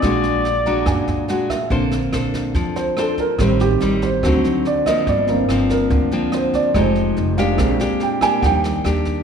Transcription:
Already playing: D5
0.01 A#1 A#2 G#3 D4 F#4 G#4, kick, cross-stick, snare
0.07 C#6
0.24 snare
0.45 snare
0.66 G#3 D4 F#4 A#5, kick, snare
0.86 F#2 A#2 G#5, kick, cross-stick, snare
1.08 F#2, snare
1.28 G#3 D4 F#4 F#5, snare
1.50 E5, kick, cross-stick, snare
1.70 A#1 D3 A#3 C4 D4 A4 C5, kick, snare
1.91 snare
2.13 A#1 D4 A4 C5, cross-stick, snare
2.34 kick, snare
2.54 F2 F3, kick, snare
2.76 C5, snare
2.97 D4 A4 C5, cross-stick, snare
3.18 A#4, kick, snare
3.39 A1 A2 D#3 G3 C4 D#4 C5, kick, cross-stick, snare
3.60 G4, snare
3.80 A1 G3 C4 D#4, snare
4.02 C5, kick, snare
4.23 D2 D3 F#3 C4 D#4, kick, cross-stick, snare
4.44 snare
4.65 D5, snare
4.86 F3 A#3 C4 D#5, kick, cross-stick, snare
5.07 G1 G2 D5, kick, snare
5.27 F3 A#3 C4, snare
5.49 G1 F3 A#3 C4, cross-stick, snare
5.69 A#4, kick, snare
5.90 D2 D3, kick, snare
6.11 F3 A#3 C4, snare
6.32 C5, cross-stick, snare
6.53 D5, kick, snare
6.74 F1 F3 G#3 D#4 G4 C5, kick, cross-stick, snare
6.96 snare
7.16 F1, snare
7.37 G#3 D4 G4 F5, kick, snare
7.58 A#1 A#2 G#3 C4 D4, kick, cross-stick, snare
7.80 G#3 D4 G4, snare
8.00 G5, snare
8.21 A#3 D4 G4 G#5, kick, cross-stick, snare
8.41 D#2 D#3 F3 G3 D4 F#5, kick, snare
8.46 G5
8.64 snare
8.84 D#2 A#3 D4 G4, cross-stick, snare
9.05 kick, snare

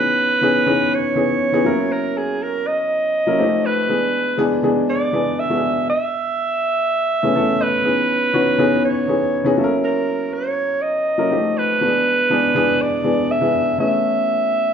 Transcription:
Already playing: E3 B3 C#4 D#4 F#4 G#4 B4
0.41 E3 B3 C#4 D#4 G#4
0.66 E3 B3 C#4 D#4 G#4
0.94 C#5
1.15 E3 B3 C#4 D#4 G#4
1.52 E3 B3 C#4 D#4 G#4
1.65 F#3 A#3 C#4 E4 A#4
1.92 A#4
2.17 G#4
2.42 A#4
2.67 D#5
3.27 F#3 A#3 C#4 E4 A#4
3.38 F3 A3 C4 D#4 G4
3.65 B4
3.89 E3 G#3 B3 D4 G#4
4.37 E3 G#3 B3 D4 G#4
4.63 E3 G#3 B3 D4 G#4
4.89 D5
5.13 E3 G#3 B3 D4 G#4
5.39 E5
5.49 E3 G#3 B3 D4 F#4
5.56 G#4
5.90 E5
7.23 E3 A3 B3 C#4 G#4
7.35 E3 A3 B3 C#4 A4
7.62 B4
7.84 E3 B3 C#4 D#4 G#4
8.34 E3 B3 C#4 D#4 F#4
8.58 E3 B3 C#4 D#4 G#4
8.85 C#5
9.07 E3 B3 C#4 D#4 G#4
9.44 E3 B3 C#4 D#4 G#4
9.57 F#3 A#3 C#4 E4 A4
9.64 A#4
9.84 A#4
10.34 C#5
10.82 D#5
11.18 F#3 A#3 C#4 E4 A#4
11.30 F3 G3 C4 D#4 G4
11.37 A3
11.58 B4
11.81 E3 G#3 B3 D4 F#4
11.87 G#4
12.30 E3 G#3 B3 D4 G#4
12.55 E3 G#3 B3 D4 G#4
12.81 D5
13.04 E3 G#3 B3 D4 G#4
13.31 E5
13.41 E3 G#3 B3 D4 G#4
13.78 E3 A3 B3 C#4 G#4 E5

